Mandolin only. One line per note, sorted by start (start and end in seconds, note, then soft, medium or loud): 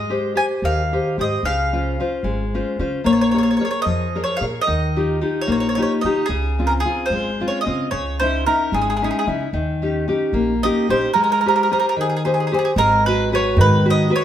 0.00 0.33 D#5 medium
0.37 0.44 G#5 medium
0.65 1.16 F5 medium
1.21 1.44 D#5 medium
1.45 2.22 F5 medium
3.06 3.12 C#5 medium
3.13 3.20 C#5 soft
3.21 3.30 C#5 medium
3.31 3.37 C#5 soft
3.38 3.42 C#5 soft
3.43 3.49 C#5 soft
3.51 3.56 C#5 soft
3.57 3.64 C#5 soft
3.65 3.69 C#5 soft
3.71 3.80 C#5 soft
3.82 4.23 D#5 medium
4.24 4.38 C#5 medium
4.37 4.44 F5 medium
4.61 5.41 D#5 medium
5.42 5.51 C#5 medium
5.52 5.59 C#5 soft
5.60 5.68 C#5 medium
5.69 5.74 C#5 soft
5.75 5.81 C#5 medium
5.82 5.92 C#5 soft
6.01 6.29 D#5 medium
6.26 6.72 G#4 medium
6.67 6.72 A#4 medium
6.80 7.09 G#4 medium
7.06 7.47 C5 medium
7.48 7.61 C#5 medium
7.61 7.90 D#5 medium
7.91 8.19 C#5 medium
8.20 8.44 C5 medium
8.46 8.73 A#4 medium
8.74 8.80 G#4 medium
8.82 8.89 G#4 soft
8.90 8.95 G#4 soft
8.97 9.03 G#4 soft
9.04 9.09 G#4 soft
9.11 9.18 G#4 soft
9.19 9.26 G#4 soft
10.63 10.90 D#5 medium
10.90 11.13 C5 medium
11.14 11.23 A#4 medium
11.24 11.31 A#4 soft
11.32 11.40 A#4 medium
11.41 11.47 A#4 soft
11.48 11.55 A#4 medium
11.56 11.62 A#4 soft
11.63 11.70 A#4 soft
11.73 11.78 A#4 soft
11.79 11.85 A#4 medium
11.89 11.93 A#4 medium
12.01 12.06 G#4 medium
12.10 12.14 G#4 soft
12.17 12.22 G#4 soft
12.25 12.30 G#4 soft
12.34 12.38 G#4 soft
12.40 12.44 G#4 soft
12.47 12.51 G#4 soft
12.54 12.58 G#4 soft
12.59 12.64 G#4 soft
12.65 12.71 G#4 soft
12.78 13.05 A#4 medium
13.06 13.30 B4 medium
13.35 13.57 C#5 medium
13.61 13.86 B4 medium
13.90 14.12 D#5 medium
14.16 14.24 C#5 medium